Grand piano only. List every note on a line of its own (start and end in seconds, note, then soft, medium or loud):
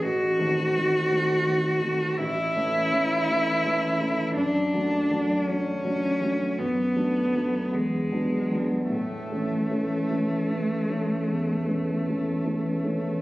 0.04 0.38 A1 soft
0.39 0.71 D#3 soft
0.39 0.71 A3 soft
0.39 0.72 C4 soft
0.76 1.07 D#3 soft
0.76 1.08 A3 soft
0.76 1.08 C4 soft
1.11 1.43 D#3 soft
1.11 1.43 A3 soft
1.11 1.43 C4 soft
1.45 1.78 D#3 soft
1.45 1.78 A3 soft
1.45 1.78 C4 soft
1.82 2.15 D#3 soft
1.82 2.15 A3 soft
1.82 2.15 C4 soft
2.19 2.54 A1 soft
2.55 2.88 E3 soft
2.55 2.88 A3 soft
2.55 2.88 C#4 soft
2.92 3.24 E3 soft
2.92 3.24 A3 soft
2.92 3.25 C#4 soft
3.29 3.61 E3 soft
3.29 3.61 A3 soft
3.29 3.62 C#4 soft
3.65 3.97 E3 soft
3.65 3.97 A3 soft
3.65 3.98 C#4 soft
4.00 4.33 E3 soft
4.00 4.33 A3 soft
4.00 4.34 C#4 soft
4.36 4.73 F#2 soft
4.74 5.08 F#3 soft
4.74 5.08 A3 soft
4.74 5.08 D4 soft
5.11 5.45 F#3 soft
5.11 5.45 A3 soft
5.11 5.45 D4 soft
5.48 5.82 F#3 soft
5.48 5.82 A3 soft
5.48 5.82 D4 soft
5.84 6.18 F#3 soft
5.84 6.18 A3 soft
5.84 6.19 D4 soft
6.21 6.55 F#3 soft
6.21 6.55 A3 soft
6.21 6.55 D4 soft
6.58 6.95 F#2 soft
6.96 7.31 F#3 soft
6.96 7.31 A3 soft
6.96 7.31 D4 soft
7.34 7.69 F#3 soft
7.34 7.70 A3 soft
7.34 7.70 D4 soft
7.72 8.11 E2 soft
8.12 8.48 F#3 soft
8.12 8.48 B3 soft
8.12 8.48 D4 soft
8.52 8.88 F#3 soft
8.52 8.88 B3 soft
8.52 8.88 D4 soft
8.90 9.30 A2 soft
9.32 9.68 E3 soft
9.32 9.68 A3 soft
9.32 9.69 C#4 soft
9.70 10.07 E3 soft
9.70 10.08 A3 soft
9.70 10.08 C#4 soft
10.10 10.47 E3 soft
10.10 10.47 A3 soft
10.10 10.47 C#4 soft
10.50 10.86 E3 soft
10.50 10.86 A3 soft
10.50 10.86 C#4 soft
10.89 11.25 E3 soft
10.89 11.25 A3 soft
10.89 11.25 C#4 soft
11.27 11.67 E2 soft
11.67 12.04 E3 soft
11.67 12.04 A3 soft
11.67 12.04 C#4 soft
12.08 12.44 E3 soft
12.08 12.44 A3 soft
12.08 12.44 C#4 soft
12.45 12.82 E3 soft
12.45 12.82 A3 soft
12.45 12.82 C#4 soft
12.84 13.22 E3 soft
12.84 13.22 A3 soft
12.84 13.22 C#4 soft